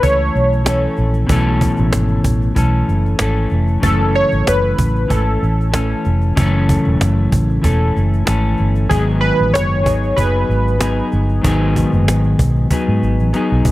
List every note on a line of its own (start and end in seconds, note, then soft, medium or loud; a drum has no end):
0.01 0.28 C#2 medium
0.01 0.64 E3 soft
0.01 0.65 A3 medium
0.01 0.67 C#4 medium
0.01 0.68 A4 medium
0.01 0.94 C#5 medium
0.01 cajon bass medium
0.35 0.86 B1 medium
0.35 cajon slap soft
0.53 cajon slap soft
0.65 1.28 E3 medium
0.65 1.29 A3 medium
0.65 1.31 C#4 medium
0.65 1.31 A4 medium
0.65 cajon slap loud
0.83 cajon slap soft
0.97 1.23 A#1 medium
0.97 cajon slap soft
1.14 cajon slap soft
1.27 1.69 B1 medium
1.27 2.55 B2 medium
1.27 2.55 E3 medium
1.27 2.56 A3 medium
1.27 cajon bass loud
1.31 2.57 C#4 medium
1.31 2.58 A4 medium
1.61 cajon bass medium
1.76 cajon slap soft
1.78 1.90 A1 medium
1.78 cajon slap soft
1.93 2.18 G#1 medium
1.93 cajon slap loud
2.08 cajon slap soft
2.24 2.50 A1 medium
2.24 cajon bass medium
2.42 cajon slap soft
2.55 2.82 B1 medium
2.55 3.18 E3 medium
2.55 3.20 A3 medium
2.55 3.21 C#4 medium
2.55 3.21 A4 medium
2.55 cajon bass medium
2.88 3.13 F#1 medium
2.88 cajon slap soft
3.06 cajon slap soft
3.19 3.45 G#1 medium
3.19 3.82 E3 medium
3.19 3.83 A3 medium
3.19 3.84 C#4 medium
3.19 3.85 A4 medium
3.19 cajon slap loud
3.36 cajon slap soft
3.50 3.77 F1 medium
3.50 cajon slap soft
3.67 cajon slap soft
3.80 4.22 F#1 medium
3.80 5.08 F#2 medium
3.80 5.09 C#3 medium
3.80 5.07 E3 medium
3.80 5.08 A3 medium
3.80 4.16 A4 medium
3.80 cajon bass medium
3.84 5.09 C#4 medium
3.84 5.10 A4 medium
4.01 cajon slap soft
4.15 4.48 C#5 medium
4.15 cajon slap soft
4.31 4.44 G#1 medium
4.31 cajon slap soft
4.47 4.72 F#1 medium
4.47 5.12 B4 medium
4.47 cajon slap loud
4.78 5.04 A1 medium
4.78 cajon bass medium
4.96 cajon slap soft
5.08 5.36 G#1 medium
5.08 5.71 E3 soft
5.08 5.72 A3 medium
5.08 5.73 C#4 medium
5.08 6.01 A4 medium
5.08 5.74 A4 medium
5.08 cajon bass medium
5.43 5.93 A1 medium
5.43 cajon slap soft
5.61 cajon slap soft
5.72 6.36 E3 soft
5.72 6.37 A3 medium
5.72 6.37 C#4 medium
5.72 6.38 A4 medium
5.72 cajon slap loud
5.91 cajon slap soft
6.05 6.31 F1 medium
6.05 cajon slap soft
6.22 cajon slap soft
6.35 6.76 F#1 medium
6.35 7.63 F#2 medium
6.35 7.63 C#3 medium
6.35 7.60 E3 medium
6.35 7.62 A3 medium
6.35 7.63 C#4 medium
6.35 cajon bass loud
6.40 7.64 A4 medium
6.56 cajon slap soft
6.69 cajon bass medium
6.85 6.98 E1 medium
6.85 cajon slap soft
7.01 7.26 F#1 medium
7.01 cajon slap loud
7.32 7.58 A1 medium
7.32 cajon bass medium
7.50 cajon slap soft
7.62 7.89 E1 medium
7.62 8.24 E3 medium
7.62 8.25 A3 medium
7.62 8.27 C#4 medium
7.62 8.28 A4 medium
7.62 cajon bass medium
7.97 8.21 F#1 medium
7.97 cajon slap soft
8.14 cajon slap soft
8.25 8.53 G#1 medium
8.25 8.89 E3 medium
8.25 8.90 A3 medium
8.25 8.90 C#4 medium
8.25 8.91 A4 medium
8.25 cajon slap loud
8.44 cajon slap soft
8.58 8.85 G1 medium
8.58 cajon slap soft
8.75 cajon slap soft
8.89 9.30 G#1 medium
8.89 9.85 G#2 medium
8.89 9.85 D#3 medium
8.89 9.85 F#3 medium
8.89 9.86 B3 medium
8.89 9.83 D#4 medium
8.89 9.04 G#4 medium
8.89 9.83 G#4 medium
8.89 cajon bass loud
9.09 cajon slap soft
9.21 9.54 B4 medium
9.21 cajon slap soft
9.39 9.52 A1 medium
9.39 cajon slap soft
9.54 9.86 F#1 medium
9.54 10.19 C#5 loud
9.54 cajon slap loud
9.83 10.11 G#1 medium
9.83 10.15 F#3 soft
9.83 10.17 B3 soft
9.83 10.17 D#4 soft
9.83 10.16 G#4 soft
9.83 cajon bass medium
10.03 cajon slap soft
10.16 10.43 F#1 medium
10.16 10.78 F#3 medium
10.16 10.80 B3 medium
10.16 10.80 D#4 medium
10.16 10.82 G#4 medium
10.16 11.08 B4 medium
10.16 cajon bass medium
10.49 11.00 G#1 medium
10.49 cajon slap soft
10.68 cajon slap soft
10.79 11.43 F#3 medium
10.79 11.45 B3 medium
10.79 11.44 D#4 medium
10.79 11.47 G#4 medium
10.79 cajon slap loud
10.98 cajon slap soft
11.12 11.38 G1 medium
11.12 cajon slap soft
11.30 cajon slap soft
11.42 11.84 G#1 medium
11.42 12.70 G#2 medium
11.42 12.70 D#3 medium
11.42 12.69 F#3 medium
11.42 12.71 B3 medium
11.42 cajon bass loud
11.46 12.71 D#4 medium
11.46 12.73 G#4 loud
11.76 cajon bass medium
11.92 12.08 F#1 medium
11.92 cajon slap soft
11.94 cajon slap soft
12.08 12.33 G#1 medium
12.08 cajon slap loud
12.24 cajon slap soft
12.39 12.64 B1 medium
12.39 cajon bass medium
12.56 cajon slap soft
12.70 13.32 F#3 medium
12.70 13.34 B3 medium
12.70 13.34 D#4 medium
12.70 13.36 G#4 medium
12.70 cajon bass medium
12.88 13.00 G#2 medium
13.03 13.16 G#1 medium
13.03 cajon slap soft
13.20 13.31 A1 medium
13.20 cajon slap soft
13.33 13.71 F#3 medium
13.33 13.71 B3 medium
13.33 13.71 D#4 medium
13.33 13.71 G#4 medium
13.33 cajon slap soft
13.50 13.63 B1 medium
13.50 cajon slap soft
13.65 13.71 B1 medium
13.65 cajon bass medium